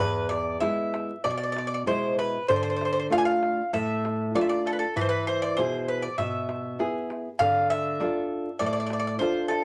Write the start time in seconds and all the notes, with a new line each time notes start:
0.00 E2 B4
0.15 darbuka tek
0.29 D5, darbuka tek
0.60 G#3 B3 E4 E5, darbuka tek
0.94 darbuka tek
1.09 darbuka tek
1.24 B2 D5, darbuka tek
1.30 D5
1.37 D5
1.43 D5
1.52 D5
1.56 D5, darbuka tek
1.67 D5
1.74 D5
1.86 B2 G#3 E4 C5, darbuka tek
2.19 B4, darbuka tek
2.35 darbuka tek
2.48 D3 C5, darbuka dum
2.56 C5
2.63 C5
2.70 C5
2.76 C5
2.81 C5, darbuka tek
2.93 C5
3.00 C5
3.10 A3 D4 F4 F5, darbuka tek
3.18 G#5
3.25 F5
3.43 darbuka tek
3.58 darbuka tek
3.73 A2 E5, darbuka tek
4.05 darbuka tek
4.34 A3 D4 F4 D5, darbuka tek
4.41 E5
4.49 D5
4.66 A4, darbuka tek
4.73 B4
4.79 A4, darbuka tek
4.96 E3 B4, darbuka dum
5.01 C5
5.09 B4
5.27 C5, darbuka tek
5.42 D5
5.57 B2 E4 G#4 C5, darbuka tek
5.88 B4
6.02 D5, darbuka tek
6.18 B2 E5, darbuka tek, darbuka dum
6.49 darbuka tek
6.64 darbuka tek
6.79 B3 E4 G#4, darbuka tek
7.10 darbuka tek
7.25 darbuka tek
7.39 D3 F5, darbuka dum
7.55 darbuka tek
7.70 E5, darbuka tek
8.00 D4 F4 A4, darbuka tek
8.46 darbuka tek
8.59 A2 D5, darbuka tek
8.66 D5
8.73 D5
8.80 D5
8.87 D5, darbuka tek
8.93 D5
9.00 D5
9.07 D5
9.19 D4 F4 A4 C5, darbuka tek
9.48 A4, darbuka tek